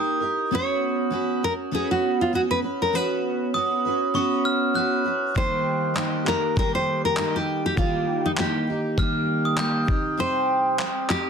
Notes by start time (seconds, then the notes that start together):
Already playing: A#3 D#4 G4 A#4 D#6
0.20 D#4 G4 A#4
0.51 B3 C#4 F#4 B4 C#5
1.10 B3 C#4 F#4 B4
1.43 C#4 F#4 A#4
1.71 B3 C#4 F#4 G#4 B4
1.91 F#4
2.21 F4
2.33 B3 C#4 F#4 B4
2.51 B4
2.62 C#4 F#4 B4
2.82 A#4
2.93 B3 C#4 F#4 B4
3.54 B3 C#4 F#4 B4 D#6
3.85 C#4 F#4 B4
4.14 B3 C#4 F#4 B4 C#6
4.45 F6
4.74 B3 C#4 F#4 B4 F#6
5.04 C#4 F#4 B4
5.34 D#3 G3 A#3 D#4 G4 C5, kick
5.94 G3 A#3 D#4 G4, clap
6.25 A#3 D#4 G4 A#4, clap
6.56 D#3 G3 A#3 D#4 G4 A#4, kick
6.75 C5
7.05 A#4
7.16 G3 A#3 D#4 G4, clap
7.36 G4
7.66 G4
7.77 D#3 G3 A#3 D#4 F4 G4, kick
8.26 D#4
8.37 G3 A#3 D#4 G4, clap
8.67 A#3 D#4 G4
8.98 D#3 G3 A#3 D#4 G4 F6, kick
9.45 D#6
9.57 G3 A#3 D#4 G4 G6, clap
9.87 C4 D#4 G4, kick
10.17 C3 G3 C4 D#4 G4 C5
10.78 G3 C4 D#4 G4, clap
11.09 C4 D#4 G4, clap